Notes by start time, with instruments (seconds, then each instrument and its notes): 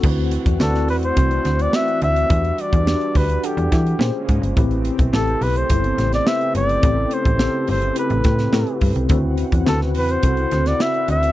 0.03 fm bass D2, analog synth pad E3 A3 C4 F#5, tine electric piano C4 E4 F#4 B4, kick, crash
0.31 closed hi-hat
0.46 fm bass E2, kick, closed hi-hat
0.59 fm bass D2, tine electric piano C4 E4 F#4 D5, flugelhorn A4, snare
0.74 snare
0.88 fm bass E2, flugelhorn B4, open hi-hat
1.03 flugelhorn C5, closed hi-hat
1.16 fm bass C2, tine electric piano C4 E4 F#4 C5, kick, closed hi-hat
1.31 closed hi-hat
1.45 fm bass D2, snare, closed hi-hat
1.59 flugelhorn D5, closed hi-hat
1.72 tine electric piano C4 E4 F#4 D5, flugelhorn E5, snare
1.88 closed hi-hat
2.02 fm bass D2, flugelhorn E5, closed hi-hat
2.16 closed hi-hat
2.29 fm bass E2, analog synth pad G3 D4, tine electric piano D4 F#4 G4 B4, kick, closed hi-hat
2.45 closed hi-hat
2.58 flugelhorn D5, closed hi-hat
2.73 fm bass E2, kick, closed hi-hat
2.86 tine electric piano D4 F#4 G4 D5, snare
3.01 closed hi-hat
3.15 fm bass D2, flugelhorn B4, kick, open hi-hat
3.29 closed hi-hat
3.43 tine electric piano D4 G4 A4 F#5, flugelhorn G4, closed hi-hat
3.57 fm bass E2, closed hi-hat
3.72 fm bass E3, kick, snare, closed hi-hat
3.87 closed hi-hat
3.99 fm bass A#2, analog synth pad C#3 G#3 A#3 C#4, tine electric piano C#4 F4 G#4 C5, snare
4.29 fm bass G#2, kick, closed hi-hat
4.42 fm bass G1, closed hi-hat
4.56 fm bass A1, analog synth pad A3 C4 G4, tine electric piano C4 E4 G4 B4, kick, closed hi-hat
4.71 closed hi-hat
4.85 closed hi-hat
4.99 fm bass B1, kick, closed hi-hat
5.12 fm bass A1, tine electric piano C4 E4 G4 A4, flugelhorn A4, snare
5.27 closed hi-hat
5.41 fm bass B1, flugelhorn B4, open hi-hat
5.56 flugelhorn C5, closed hi-hat
5.70 fm bass G1, tine electric piano B3 E4 G4 C5, kick, closed hi-hat
5.76 tine electric piano C4
5.84 closed hi-hat
5.98 fm bass A1, snare, closed hi-hat
6.13 flugelhorn D5, snare, closed hi-hat
6.26 tine electric piano C4 E4 G4 B4, flugelhorn E5, snare
6.41 closed hi-hat
6.55 fm bass G1, flugelhorn D5, closed hi-hat
6.69 closed hi-hat
6.82 fm bass A1, tine electric piano C4 E4 G4 A4, kick, closed hi-hat
7.11 flugelhorn C5, closed hi-hat
7.25 fm bass A1, kick, closed hi-hat
7.39 tine electric piano C4 E4 G4 A4, snare
7.68 fm bass G1, flugelhorn C5, open hi-hat
7.82 closed hi-hat
7.95 tine electric piano C4 E4 G4 B4, flugelhorn B4, closed hi-hat
8.10 fm bass A1, closed hi-hat
8.24 fm bass A2, kick, snare, closed hi-hat
8.39 snare, closed hi-hat
8.52 fm bass A2, tine electric piano C4 E4 G4 A4, snare
8.60 tine electric piano B4
8.67 closed hi-hat
8.81 fm bass G2, kick, open hi-hat
8.95 fm bass C2, closed hi-hat
9.09 fm bass D2, tine electric piano C4 E4 F#4 A4, analog synth pad E4 F#5, kick, closed hi-hat
9.17 tine electric piano B4
9.38 closed hi-hat
9.52 fm bass E2, kick, closed hi-hat
9.66 fm bass D2, tine electric piano C4 E4 F#4 B4, flugelhorn A4, snare
9.81 snare
9.95 fm bass E2, flugelhorn B4, open hi-hat
10.09 flugelhorn C5, closed hi-hat
10.22 fm bass C2, tine electric piano C4 E4 F#4 A4, kick, closed hi-hat
10.37 closed hi-hat
10.51 fm bass D2, snare, closed hi-hat
10.66 flugelhorn D5, snare, closed hi-hat
10.79 tine electric piano C4 E4 F#4 D5, flugelhorn E5, snare
10.94 closed hi-hat
11.08 fm bass D2, flugelhorn E5, closed hi-hat
11.23 closed hi-hat